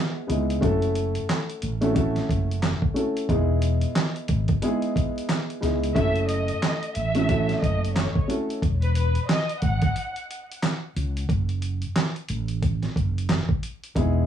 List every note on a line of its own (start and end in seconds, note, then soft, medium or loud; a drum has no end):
0.00 0.22 G#3 medium
0.00 0.23 B3 medium
0.00 0.23 D#4 medium
0.00 0.23 E4 medium
0.00 0.23 G#4 loud
0.27 0.56 C#2 medium
0.27 0.59 G#3 medium
0.27 0.60 B3 medium
0.27 0.60 D#4 medium
0.27 0.60 E4 medium
0.27 0.61 G#4 medium
0.27 closed hi-hat medium
0.50 closed hi-hat soft
0.61 1.16 F#1 loud
0.61 1.70 A3 medium
0.61 1.71 C#4 medium
0.61 1.71 E4 medium
0.61 1.71 F#4 medium
0.61 1.72 A4 loud
0.61 kick loud
0.61 closed hi-hat medium
0.82 closed hi-hat soft
0.95 closed hi-hat medium
1.15 closed hi-hat soft
1.29 snare loud
1.29 clap medium
1.29 closed hi-hat medium
1.50 closed hi-hat soft
1.62 2.16 A1 medium
1.62 closed hi-hat medium
1.81 1.92 A3 medium
1.81 1.93 C#4 medium
1.81 1.94 E4 medium
1.81 1.94 F#4 medium
1.81 1.95 A4 medium
1.81 closed hi-hat soft
1.94 2.88 A3 medium
1.94 2.89 C#4 medium
1.94 2.89 E4 medium
1.94 2.89 F#4 medium
1.94 2.90 A4 loud
1.94 kick loud
1.94 closed hi-hat medium
2.16 snare soft
2.16 closed hi-hat soft
2.29 2.72 F#1 loud
2.29 kick medium
2.29 closed hi-hat medium
2.51 closed hi-hat medium
2.63 snare loud
2.63 clap medium
2.63 closed hi-hat medium
2.82 kick medium
2.94 3.26 A3 medium
2.94 3.27 C#4 medium
2.94 3.27 E4 medium
2.94 3.27 F#4 medium
2.94 3.27 A4 medium
2.94 closed hi-hat medium
3.17 closed hi-hat soft
3.29 3.83 E1 loud
3.29 4.54 G#3 medium
3.29 4.54 B3 medium
3.29 4.54 D#4 medium
3.29 4.55 E4 medium
3.29 4.55 G#4 medium
3.29 kick loud
3.29 closed hi-hat medium
3.62 closed hi-hat medium
3.81 closed hi-hat soft
3.96 snare loud
3.96 clap medium
3.96 closed hi-hat medium
4.16 closed hi-hat soft
4.28 4.56 G#1 loud
4.28 kick medium
4.28 closed hi-hat medium
4.48 kick medium
4.48 closed hi-hat medium
4.62 5.56 G#3 medium
4.62 5.56 B3 medium
4.62 5.56 D#4 medium
4.62 5.57 E4 medium
4.62 5.57 G#4 loud
4.62 closed hi-hat medium
4.82 closed hi-hat soft
4.96 kick medium
4.96 closed hi-hat medium
5.18 closed hi-hat medium
5.29 snare loud
5.29 clap medium
5.29 closed hi-hat medium
5.50 closed hi-hat soft
5.61 5.90 C#2 medium
5.61 5.93 G#3 medium
5.61 5.93 B3 medium
5.61 5.93 D#4 medium
5.61 5.94 E4 medium
5.61 5.94 G#4 medium
5.61 snare soft
5.61 closed hi-hat medium
5.84 closed hi-hat medium
5.95 6.50 F#1 loud
5.95 7.04 A3 medium
5.95 7.04 C#4 medium
5.95 7.05 E4 medium
5.95 7.05 F#4 medium
5.95 7.05 A4 loud
5.95 6.26 E5 loud
5.95 kick loud
5.95 closed hi-hat medium
6.16 closed hi-hat soft
6.29 6.92 D#5 medium
6.29 closed hi-hat medium
6.48 closed hi-hat soft
6.63 snare loud
6.63 clap medium
6.63 closed hi-hat medium
6.83 closed hi-hat soft
6.95 7.50 A1 loud
6.95 7.59 E5 medium
6.95 closed hi-hat medium
7.15 7.26 A3 medium
7.15 7.27 C#4 medium
7.15 7.27 E4 medium
7.15 7.28 F#4 medium
7.15 7.29 A4 medium
7.15 closed hi-hat medium
7.28 8.22 A3 medium
7.28 8.22 C#4 medium
7.28 8.23 E4 medium
7.28 8.23 F#4 medium
7.28 8.23 A4 loud
7.28 kick loud
7.28 closed hi-hat medium
7.49 snare soft
7.49 closed hi-hat soft
7.61 8.06 F#1 loud
7.61 7.92 D#5 medium
7.61 kick medium
7.61 closed hi-hat medium
7.85 closed hi-hat medium
7.95 8.26 C#5 medium
7.95 snare loud
7.95 clap medium
7.95 closed hi-hat medium
8.15 kick medium
8.28 8.60 A3 medium
8.28 8.60 C#4 medium
8.28 8.60 E4 medium
8.28 8.61 F#4 medium
8.28 8.61 A4 medium
8.28 closed hi-hat medium
8.50 closed hi-hat medium
8.62 9.16 E1 loud
8.62 kick loud
8.62 closed hi-hat medium
8.82 8.94 B4 medium
8.82 closed hi-hat soft
8.95 9.26 B4 medium
8.95 closed hi-hat medium
9.15 closed hi-hat soft
9.29 9.60 D#5 medium
9.29 snare loud
9.29 clap medium
9.29 closed hi-hat medium
9.49 closed hi-hat soft
9.62 9.89 G#1 loud
9.62 10.13 F#5 medium
9.62 kick medium
9.62 closed hi-hat medium
9.82 kick medium
9.82 closed hi-hat medium
9.96 closed hi-hat medium
10.16 closed hi-hat soft
10.31 closed hi-hat medium
10.52 closed hi-hat medium
10.63 snare loud
10.63 clap loud
10.63 closed hi-hat medium
10.96 11.23 C#2 medium
10.96 closed hi-hat medium
11.17 closed hi-hat soft
11.29 11.83 F#1 loud
11.29 kick loud
11.29 closed hi-hat medium
11.49 closed hi-hat soft
11.62 closed hi-hat medium
11.82 closed hi-hat soft
11.96 snare loud
11.96 clap medium
11.96 closed hi-hat medium
12.16 closed hi-hat soft
12.28 12.83 A1 loud
12.28 closed hi-hat medium
12.48 closed hi-hat medium
12.63 kick loud
12.63 closed hi-hat medium
12.83 snare soft
12.83 closed hi-hat soft
12.96 13.39 F#1 loud
12.96 kick medium
12.96 closed hi-hat medium
13.18 closed hi-hat medium
13.29 snare loud
13.29 clap loud
13.29 closed hi-hat medium
13.49 kick medium
13.63 closed hi-hat medium
13.84 closed hi-hat soft
13.95 14.26 E1 loud
13.95 14.26 G#3 medium
13.95 14.26 B3 medium
13.95 14.26 D#4 medium
13.95 14.26 E4 medium
13.95 14.26 G#4 loud
13.95 kick loud
13.95 closed hi-hat medium